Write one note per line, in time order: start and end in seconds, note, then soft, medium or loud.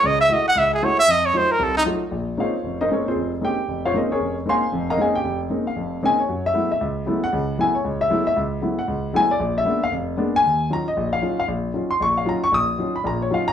0.03 0.25 C#2 medium
0.03 0.26 C#3 medium
0.03 0.20 D#5 medium
0.20 0.34 E5 loud
0.29 0.46 G#3 medium
0.29 0.46 A3 soft
0.29 0.46 E4 soft
0.29 0.46 F#4 medium
0.29 0.46 D#5 medium
0.48 0.59 F#5 loud
0.55 0.78 C#2 medium
0.55 0.72 E5 medium
0.74 0.86 G#4 medium
0.82 0.98 G#3 medium
0.82 0.98 A3 medium
0.82 0.98 E4 medium
0.82 0.99 F#4 medium
0.82 0.98 C#5 medium
0.99 1.12 E5 loud
1.07 1.30 F2 medium
1.07 1.27 D#5 loud
1.25 1.38 C#5 medium
1.33 1.50 F#3 medium
1.33 1.50 A3 soft
1.33 1.50 D#4 medium
1.33 1.50 F4 medium
1.33 1.53 C5 medium
1.51 1.65 A#4 medium
1.59 1.82 C2 medium
1.59 1.76 A4 medium
1.77 1.83 D#4 loud
1.85 2.02 F#3 medium
1.85 2.02 A3 medium
1.85 2.02 D#4 medium
1.85 2.02 F4 medium
2.11 2.34 A#1 medium
2.37 2.54 G#3 medium
2.37 2.54 A#3 soft
2.37 2.54 C4 soft
2.37 2.54 C#4 soft
2.37 2.54 D#4 medium
2.37 2.78 F4 medium
2.37 2.78 C5 medium
2.37 2.78 C#5 medium
2.37 2.77 F5 medium
2.64 2.86 F1 medium
2.81 2.90 D#4 medium
2.81 2.90 A#4 medium
2.81 2.91 C5 medium
2.81 2.90 D#5 medium
2.90 3.06 G#3 medium
2.90 3.06 A#3 medium
2.90 3.06 C4 medium
2.90 3.07 C#4 medium
2.90 3.07 D#4 medium
2.90 3.06 G#4 medium
2.90 3.06 A#4 medium
2.90 3.06 C#5 medium
3.08 3.31 C4 medium
3.08 3.31 F4 medium
3.08 3.31 G#4 medium
3.08 3.31 C5 medium
3.16 3.38 F1 medium
3.41 3.58 G#3 medium
3.41 3.58 A#3 soft
3.41 3.58 C4 soft
3.41 3.58 C#4 soft
3.41 3.58 D#4 medium
3.41 3.82 G4 medium
3.41 3.82 G5 loud
3.68 3.90 F1 medium
3.85 3.95 F4 medium
3.85 3.95 C5 medium
3.85 3.95 C#5 medium
3.85 3.95 F5 medium
3.94 4.10 G#3 medium
3.94 4.10 A#3 medium
3.94 4.10 C4 medium
3.94 4.10 C#4 medium
3.94 4.10 D#4 medium
3.94 4.10 A#4 medium
3.94 4.10 C5 medium
3.94 4.10 D#5 medium
4.12 4.35 C#4 medium
4.12 4.35 G#4 medium
4.12 4.35 A#4 medium
4.12 4.35 C#5 medium
4.20 4.42 F1 medium
4.46 4.62 G#3 medium
4.46 4.62 A#3 medium
4.46 4.62 C4 medium
4.46 4.62 C#4 medium
4.46 4.63 D#4 medium
4.46 4.86 C5 medium
4.46 4.86 C6 loud
4.50 4.86 F5 medium
4.50 4.86 G#5 medium
4.72 4.94 F1 medium
4.72 4.94 F2 medium
4.90 4.99 A#4 medium
4.90 4.99 D#5 medium
4.90 4.99 F5 medium
4.90 4.99 A#5 loud
4.97 5.14 G#3 medium
4.97 5.14 A#3 medium
4.97 5.14 C4 medium
4.97 5.14 C#4 medium
4.97 5.14 D#4 medium
5.01 5.15 G#4 medium
5.01 5.14 D#5 medium
5.01 5.15 F5 medium
5.01 5.14 G#5 medium
5.15 5.39 G4 medium
5.15 5.39 G5 medium
5.24 5.46 F1 medium
5.50 5.66 G#3 medium
5.50 5.66 A#3 soft
5.50 5.66 C4 soft
5.50 5.67 C#4 soft
5.50 5.66 D#4 medium
5.67 6.00 F5 medium
5.76 5.98 F1 medium
5.76 5.98 F2 medium
6.03 6.19 G#3 medium
6.03 6.19 A#3 medium
6.03 6.19 C4 medium
6.03 6.19 C#4 medium
6.03 6.19 D#4 medium
6.03 6.19 G#5 loud
6.20 6.43 C#5 medium
6.29 6.50 F#2 medium
6.29 6.50 F#3 medium
6.46 6.69 E5 medium
6.54 6.70 F#3 medium
6.54 6.70 G#3 soft
6.54 6.70 A3 medium
6.54 6.70 B3 medium
6.54 6.71 E4 medium
6.72 6.81 E5 medium
6.81 7.03 C#2 medium
7.06 7.22 F#3 medium
7.06 7.23 G#3 medium
7.06 7.23 A3 medium
7.06 7.23 B3 medium
7.06 7.23 E4 medium
7.24 7.57 F#5 loud
7.32 7.54 C#2 medium
7.32 7.54 C#3 medium
7.58 7.74 F#3 medium
7.58 7.75 G#3 soft
7.58 7.75 A3 soft
7.58 7.75 B3 medium
7.58 7.75 E4 medium
7.58 7.74 G#5 loud
7.75 7.98 C#5 medium
7.84 8.06 C#2 medium
8.01 8.24 E5 loud
8.10 8.26 F#3 medium
8.10 8.27 G#3 medium
8.10 8.26 A3 medium
8.10 8.27 B3 medium
8.10 8.27 E4 medium
8.27 8.36 E5 medium
8.36 8.58 C#2 medium
8.62 8.78 F#3 medium
8.62 8.78 G#3 soft
8.62 8.79 A3 soft
8.62 8.78 B3 soft
8.62 8.79 E4 medium
8.79 9.12 F#5 medium
8.88 9.10 C#2 medium
9.13 9.30 F#3 medium
9.13 9.30 G#3 medium
9.13 9.31 A3 medium
9.13 9.30 B3 medium
9.13 9.31 E4 medium
9.13 9.30 G#5 loud
9.31 9.55 D5 loud
9.40 9.62 A#1 medium
9.58 9.81 E5 loud
9.65 9.82 G#3 medium
9.65 9.82 A#3 soft
9.65 9.82 B3 medium
9.65 9.82 D4 medium
9.84 9.93 F5 loud
9.92 10.14 F1 medium
10.17 10.34 G#3 medium
10.17 10.34 A#3 medium
10.17 10.34 B3 medium
10.17 10.34 D4 medium
10.36 10.69 G#5 loud
10.44 10.66 D#2 medium
10.70 10.87 F#3 soft
10.70 10.87 C#4 medium
10.70 10.87 D#4 soft
10.70 10.87 F4 medium
10.70 10.87 A#5 loud
10.88 11.11 D#5 medium
10.97 11.19 A#1 medium
11.13 11.36 F5 loud
11.21 11.38 F#3 medium
11.21 11.39 C#4 medium
11.21 11.39 D#4 medium
11.21 11.39 F4 medium
11.40 11.45 F5 loud
11.48 11.70 A#1 medium
11.74 11.91 F#3 soft
11.74 11.91 C#4 soft
11.74 11.91 D#4 soft
11.74 11.91 F4 medium
11.91 12.01 C6 loud
12.00 12.23 A#1 medium
12.00 12.16 C#6 loud
12.17 12.27 F5 medium
12.25 12.42 F#3 medium
12.25 12.43 C#4 medium
12.25 12.43 D#4 medium
12.25 12.43 F4 medium
12.25 12.43 A#5 medium
12.44 12.53 C#6 loud
12.52 12.74 A#1 medium
12.52 12.92 D#6 loud
12.79 12.95 F#3 medium
12.79 12.95 C#4 medium
12.79 12.95 D#4 soft
12.79 12.96 F4 medium
12.96 13.05 B5 medium
13.04 13.27 A#1 medium
13.04 13.27 A#2 medium
13.04 13.21 A#5 loud
13.22 13.32 C#5 medium
13.30 13.47 F#3 medium
13.30 13.47 C#4 medium
13.30 13.47 D#4 medium
13.30 13.47 F4 medium
13.30 13.47 F5 medium
13.48 13.53 A#5 loud